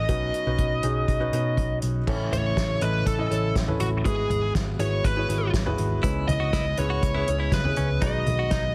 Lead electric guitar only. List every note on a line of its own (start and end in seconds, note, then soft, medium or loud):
0.00 1.78 D#5 medium
2.33 2.84 C#5 loud
2.82 3.07 B4 medium
3.07 3.53 A4 medium
3.81 3.87 F#4 medium
4.05 4.52 G#4 medium
4.80 5.05 C#5 medium
5.05 5.51 B4 medium
6.28 6.78 D#5 loud
6.79 7.55 C#5 medium
7.54 8.04 B4 medium
8.03 8.75 D#5 medium